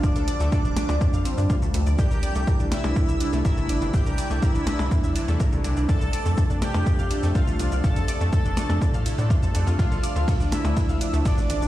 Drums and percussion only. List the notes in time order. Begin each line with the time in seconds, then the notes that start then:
0.03 kick, shaker
0.16 closed hi-hat, shaker
0.28 closed hi-hat, shaker
0.40 shaker
0.52 kick, shaker
0.65 shaker
0.77 closed hi-hat, percussion blips, shaker
0.89 percussion blips, shaker
1.01 kick, shaker
1.13 shaker
1.25 closed hi-hat, shaker
1.38 shaker
1.50 kick, shaker
1.62 shaker
1.74 closed hi-hat, shaker
1.87 shaker
1.99 kick, shaker
2.11 shaker
2.23 closed hi-hat, shaker
2.35 shaker
2.47 kick, shaker
2.60 shaker
2.72 closed hi-hat, percussion blips, shaker
2.84 percussion blips, shaker
2.96 kick, shaker
3.09 shaker
3.20 closed hi-hat, shaker
3.33 shaker
3.45 kick, shaker
3.57 shaker
3.69 closed hi-hat, shaker
3.82 shaker
3.94 kick, shaker
4.06 shaker
4.18 closed hi-hat, shaker
4.31 shaker
4.42 kick, shaker
4.55 shaker
4.67 closed hi-hat, percussion blips, shaker
4.79 percussion blips, shaker
4.91 kick, shaker
5.04 shaker
5.16 closed hi-hat, shaker
5.28 shaker
5.40 kick, shaker
5.52 shaker
5.64 closed hi-hat, shaker
5.77 shaker
5.89 kick, shaker
6.01 shaker
6.13 closed hi-hat, shaker
6.26 shaker
6.38 kick, shaker
6.50 shaker
6.62 closed hi-hat, percussion blips, shaker
6.74 percussion blips, shaker
6.86 kick, shaker
6.99 shaker
7.11 closed hi-hat, shaker
7.23 shaker
7.35 kick, shaker
7.48 shaker
7.59 closed hi-hat, shaker
7.72 shaker
7.84 kick, shaker
7.96 closed hi-hat, shaker
8.08 closed hi-hat, shaker
8.21 shaker
8.33 kick, shaker
8.45 shaker
8.57 closed hi-hat, percussion blips, shaker
8.70 percussion blips, shaker
8.82 kick, shaker
8.94 shaker
9.06 closed hi-hat, shaker
9.18 shaker
9.30 kick, shaker
9.43 shaker
9.55 closed hi-hat, shaker
9.67 shaker
9.79 kick, ride, shaker
9.92 shaker
10.04 closed hi-hat, shaker
10.16 shaker
10.28 kick, ride, shaker
10.40 shaker
10.52 closed hi-hat, percussion blips, shaker
10.65 percussion blips, shaker
10.77 kick, ride, shaker
10.89 shaker
11.01 closed hi-hat, shaker
11.13 shaker
11.25 kick, ride, shaker
11.38 shaker
11.50 closed hi-hat, shaker
11.62 shaker